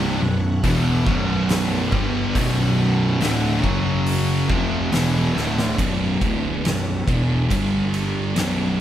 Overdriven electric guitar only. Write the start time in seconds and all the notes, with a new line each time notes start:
Already playing: C2 G2 C3
0.21 B1 F#2
0.64 E2 B2 E3
1.07 B1 F#2 B2
1.92 G2 D3 G3
2.35 B1 F#2 B2
3.21 D2 A2 D3
3.63 F#2 C#3 F#3
4.49 F2 C3 F3
4.92 E2 B2 E3
5.35 D2 A2 D3